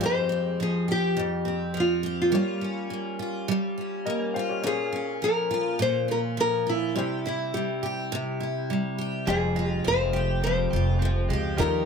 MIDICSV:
0, 0, Header, 1, 6, 480
1, 0, Start_track
1, 0, Key_signature, -4, "minor"
1, 0, Tempo, 578592
1, 12, Time_signature, 4, 2, 24, 8
1, 9833, End_track
2, 0, Start_track
2, 0, Title_t, "Nylon-string guitar"
2, 0, Program_c, 0, 24
2, 47, Note_on_c, 0, 72, 95
2, 514, Note_off_c, 0, 72, 0
2, 518, Note_on_c, 0, 68, 83
2, 752, Note_off_c, 0, 68, 0
2, 760, Note_on_c, 0, 67, 83
2, 1487, Note_off_c, 0, 67, 0
2, 1493, Note_on_c, 0, 65, 72
2, 1809, Note_off_c, 0, 65, 0
2, 1838, Note_on_c, 0, 65, 69
2, 2752, Note_off_c, 0, 65, 0
2, 3872, Note_on_c, 0, 68, 84
2, 4310, Note_off_c, 0, 68, 0
2, 4345, Note_on_c, 0, 70, 81
2, 4786, Note_off_c, 0, 70, 0
2, 4829, Note_on_c, 0, 72, 91
2, 5068, Note_off_c, 0, 72, 0
2, 5072, Note_on_c, 0, 70, 82
2, 5135, Note_off_c, 0, 70, 0
2, 5315, Note_on_c, 0, 70, 93
2, 5551, Note_off_c, 0, 70, 0
2, 5554, Note_on_c, 0, 64, 78
2, 6018, Note_off_c, 0, 64, 0
2, 6028, Note_on_c, 0, 64, 70
2, 6245, Note_off_c, 0, 64, 0
2, 6253, Note_on_c, 0, 67, 65
2, 7180, Note_off_c, 0, 67, 0
2, 7701, Note_on_c, 0, 68, 76
2, 8025, Note_off_c, 0, 68, 0
2, 8025, Note_on_c, 0, 67, 76
2, 8144, Note_off_c, 0, 67, 0
2, 8196, Note_on_c, 0, 72, 92
2, 8631, Note_off_c, 0, 72, 0
2, 8659, Note_on_c, 0, 72, 79
2, 9618, Note_off_c, 0, 72, 0
2, 9621, Note_on_c, 0, 70, 75
2, 9833, Note_off_c, 0, 70, 0
2, 9833, End_track
3, 0, Start_track
3, 0, Title_t, "Upright piano"
3, 0, Program_c, 1, 0
3, 0, Control_c, 1, 64, 127
3, 0, Note_on_c, 1, 65, 52
3, 14, Note_on_c, 1, 67, 47
3, 22, Control_c, 1, 64, 0
3, 27, Note_on_c, 1, 72, 60
3, 47, Note_on_c, 1, 56, 55
3, 148, Control_c, 1, 64, 127
3, 1892, Note_off_c, 1, 65, 0
3, 1900, Note_off_c, 1, 67, 0
3, 1906, Note_off_c, 1, 72, 0
3, 1911, Note_on_c, 1, 58, 54
3, 1917, Note_off_c, 1, 56, 0
3, 1922, Note_on_c, 1, 65, 48
3, 1934, Note_on_c, 1, 67, 51
3, 1944, Control_c, 1, 64, 0
3, 1944, Note_on_c, 1, 73, 61
3, 2084, Control_c, 1, 64, 127
3, 3345, Note_off_c, 1, 67, 0
3, 3351, Note_off_c, 1, 73, 0
3, 3363, Note_on_c, 1, 75, 57
3, 3366, Note_on_c, 1, 70, 48
3, 3596, Note_off_c, 1, 75, 0
3, 3597, Note_off_c, 1, 70, 0
3, 3601, Note_on_c, 1, 77, 61
3, 3604, Note_on_c, 1, 72, 49
3, 3721, Note_off_c, 1, 77, 0
3, 3722, Note_off_c, 1, 72, 0
3, 3728, Note_on_c, 1, 73, 54
3, 3734, Note_on_c, 1, 67, 49
3, 3809, Note_off_c, 1, 58, 0
3, 3815, Note_off_c, 1, 65, 0
3, 3836, Note_on_c, 1, 58, 54
3, 3845, Note_on_c, 1, 61, 54
3, 3855, Note_on_c, 1, 65, 53
3, 3863, Control_c, 1, 64, 0
3, 3866, Note_on_c, 1, 72, 51
3, 3909, Note_off_c, 1, 73, 0
3, 3914, Note_off_c, 1, 72, 0
3, 3922, Note_on_c, 1, 73, 58
3, 3962, Note_off_c, 1, 67, 0
3, 4002, Control_c, 1, 64, 127
3, 5731, Note_off_c, 1, 58, 0
3, 5736, Note_off_c, 1, 61, 0
3, 5741, Note_off_c, 1, 65, 0
3, 5763, Note_on_c, 1, 55, 55
3, 5775, Note_off_c, 1, 73, 0
3, 5776, Note_on_c, 1, 60, 51
3, 5784, Control_c, 1, 64, 0
3, 5785, Note_on_c, 1, 64, 50
3, 5795, Note_on_c, 1, 72, 58
3, 5921, Control_c, 1, 64, 127
3, 7654, Note_off_c, 1, 55, 0
3, 7661, Note_off_c, 1, 60, 0
3, 7665, Note_off_c, 1, 64, 0
3, 7670, Note_off_c, 1, 72, 0
3, 7689, Note_on_c, 1, 56, 54
3, 7694, Note_on_c, 1, 65, 53
3, 7703, Control_c, 1, 64, 0
3, 7705, Note_on_c, 1, 79, 52
3, 7718, Note_on_c, 1, 72, 61
3, 7843, Control_c, 1, 64, 127
3, 9576, Note_off_c, 1, 56, 0
3, 9579, Note_off_c, 1, 65, 0
3, 9584, Note_off_c, 1, 79, 0
3, 9591, Note_off_c, 1, 72, 0
3, 9603, Note_on_c, 1, 55, 57
3, 9614, Note_on_c, 1, 63, 53
3, 9618, Note_on_c, 1, 65, 54
3, 9621, Control_c, 1, 64, 0
3, 9636, Note_on_c, 1, 69, 50
3, 9678, Note_off_c, 1, 69, 0
3, 9690, Note_on_c, 1, 70, 60
3, 9766, Control_c, 1, 64, 127
3, 9833, Note_off_c, 1, 55, 0
3, 9833, Note_off_c, 1, 63, 0
3, 9833, Note_off_c, 1, 65, 0
3, 9833, Note_off_c, 1, 70, 0
3, 9833, End_track
4, 0, Start_track
4, 0, Title_t, "Clean electric guitar"
4, 0, Program_c, 2, 27
4, 0, Note_on_c, 2, 53, 58
4, 0, Note_on_c, 2, 56, 57
4, 0, Note_on_c, 2, 60, 67
4, 471, Note_off_c, 2, 53, 0
4, 471, Note_off_c, 2, 56, 0
4, 471, Note_off_c, 2, 60, 0
4, 7690, Note_on_c, 2, 53, 67
4, 7696, Note_on_c, 2, 67, 60
4, 7929, Note_on_c, 2, 56, 52
4, 8166, Note_on_c, 2, 60, 50
4, 8402, Note_off_c, 2, 67, 0
4, 8405, Note_on_c, 2, 67, 65
4, 8633, Note_off_c, 2, 60, 0
4, 8643, Note_on_c, 2, 60, 55
4, 8879, Note_off_c, 2, 67, 0
4, 8882, Note_on_c, 2, 67, 53
4, 9108, Note_off_c, 2, 60, 0
4, 9118, Note_on_c, 2, 60, 53
4, 9353, Note_off_c, 2, 56, 0
4, 9363, Note_on_c, 2, 56, 55
4, 9596, Note_off_c, 2, 53, 0
4, 9600, Note_off_c, 2, 67, 0
4, 9600, Note_on_c, 2, 53, 73
4, 9603, Note_on_c, 2, 67, 59
4, 9652, Note_off_c, 2, 60, 0
4, 9655, Note_off_c, 2, 56, 0
4, 9833, Note_off_c, 2, 53, 0
4, 9833, Note_off_c, 2, 67, 0
4, 9833, End_track
5, 0, Start_track
5, 0, Title_t, "Steel-string acoustic guitar"
5, 0, Program_c, 3, 25
5, 0, Note_on_c, 3, 53, 61
5, 0, Note_on_c, 3, 56, 56
5, 0, Note_on_c, 3, 60, 54
5, 6, Note_on_c, 3, 41, 70
5, 10, Note_on_c, 3, 67, 57
5, 239, Note_off_c, 3, 60, 0
5, 242, Note_on_c, 3, 60, 52
5, 494, Note_off_c, 3, 53, 0
5, 497, Note_on_c, 3, 53, 51
5, 727, Note_off_c, 3, 67, 0
5, 730, Note_on_c, 3, 67, 55
5, 755, Note_off_c, 3, 56, 0
5, 958, Note_off_c, 3, 41, 0
5, 967, Note_on_c, 3, 41, 76
5, 1193, Note_off_c, 3, 60, 0
5, 1203, Note_on_c, 3, 60, 47
5, 1440, Note_off_c, 3, 53, 0
5, 1444, Note_on_c, 3, 53, 58
5, 1682, Note_off_c, 3, 67, 0
5, 1685, Note_on_c, 3, 67, 59
5, 1920, Note_off_c, 3, 53, 0
5, 1923, Note_on_c, 3, 55, 69
5, 1925, Note_off_c, 3, 67, 0
5, 1928, Note_on_c, 3, 65, 56
5, 1976, Note_off_c, 3, 60, 0
5, 1978, Note_off_c, 3, 41, 0
5, 2168, Note_on_c, 3, 61, 51
5, 2408, Note_on_c, 3, 58, 56
5, 2645, Note_off_c, 3, 65, 0
5, 2648, Note_on_c, 3, 65, 59
5, 2879, Note_off_c, 3, 55, 0
5, 2889, Note_on_c, 3, 55, 75
5, 3130, Note_off_c, 3, 61, 0
5, 3133, Note_on_c, 3, 61, 47
5, 3369, Note_off_c, 3, 58, 0
5, 3372, Note_on_c, 3, 58, 62
5, 3614, Note_off_c, 3, 65, 0
5, 3618, Note_on_c, 3, 65, 59
5, 3845, Note_on_c, 3, 46, 72
5, 3846, Note_off_c, 3, 65, 0
5, 3849, Note_on_c, 3, 65, 63
5, 3899, Note_off_c, 3, 55, 0
5, 4083, Note_off_c, 3, 61, 0
5, 4086, Note_on_c, 3, 61, 50
5, 4330, Note_on_c, 3, 53, 56
5, 4558, Note_off_c, 3, 65, 0
5, 4568, Note_on_c, 3, 65, 58
5, 4794, Note_off_c, 3, 46, 0
5, 4804, Note_on_c, 3, 46, 75
5, 5035, Note_off_c, 3, 61, 0
5, 5045, Note_on_c, 3, 61, 49
5, 5276, Note_off_c, 3, 53, 0
5, 5286, Note_on_c, 3, 53, 60
5, 5520, Note_off_c, 3, 65, 0
5, 5530, Note_on_c, 3, 65, 57
5, 5767, Note_off_c, 3, 46, 0
5, 5770, Note_on_c, 3, 48, 71
5, 5772, Note_off_c, 3, 65, 0
5, 5775, Note_on_c, 3, 67, 50
5, 5796, Note_off_c, 3, 58, 0
5, 5817, Note_off_c, 3, 61, 0
5, 5818, Note_off_c, 3, 53, 0
5, 6019, Note_on_c, 3, 64, 55
5, 6256, Note_on_c, 3, 55, 58
5, 6491, Note_off_c, 3, 67, 0
5, 6494, Note_on_c, 3, 67, 55
5, 6727, Note_off_c, 3, 48, 0
5, 6737, Note_on_c, 3, 48, 77
5, 6962, Note_off_c, 3, 64, 0
5, 6972, Note_on_c, 3, 64, 51
5, 7214, Note_off_c, 3, 55, 0
5, 7218, Note_on_c, 3, 55, 53
5, 7450, Note_off_c, 3, 67, 0
5, 7454, Note_on_c, 3, 67, 57
5, 7692, Note_on_c, 3, 41, 71
5, 7716, Note_off_c, 3, 67, 0
5, 7740, Note_off_c, 3, 64, 0
5, 7742, Note_off_c, 3, 48, 0
5, 7931, Note_on_c, 3, 65, 54
5, 7956, Note_off_c, 3, 55, 0
5, 8167, Note_on_c, 3, 53, 56
5, 8406, Note_on_c, 3, 67, 57
5, 8648, Note_off_c, 3, 41, 0
5, 8658, Note_on_c, 3, 41, 71
5, 8899, Note_off_c, 3, 65, 0
5, 8903, Note_on_c, 3, 65, 50
5, 9139, Note_off_c, 3, 53, 0
5, 9143, Note_on_c, 3, 53, 59
5, 9372, Note_off_c, 3, 67, 0
5, 9376, Note_on_c, 3, 67, 60
5, 9609, Note_on_c, 3, 51, 72
5, 9614, Note_off_c, 3, 67, 0
5, 9617, Note_on_c, 3, 67, 53
5, 9662, Note_off_c, 3, 41, 0
5, 9833, Note_off_c, 3, 51, 0
5, 9833, Note_off_c, 3, 53, 0
5, 9833, Note_off_c, 3, 65, 0
5, 9833, Note_off_c, 3, 67, 0
5, 9833, End_track
6, 0, Start_track
6, 0, Title_t, "Upright bass"
6, 0, Program_c, 4, 32
6, 7696, Note_on_c, 4, 29, 76
6, 8141, Note_off_c, 4, 29, 0
6, 8185, Note_on_c, 4, 29, 85
6, 8865, Note_off_c, 4, 29, 0
6, 8900, Note_on_c, 4, 29, 76
6, 9342, Note_off_c, 4, 29, 0
6, 9373, Note_on_c, 4, 37, 85
6, 9593, Note_off_c, 4, 37, 0
6, 9617, Note_on_c, 4, 39, 80
6, 9833, Note_off_c, 4, 39, 0
6, 9833, End_track
0, 0, End_of_file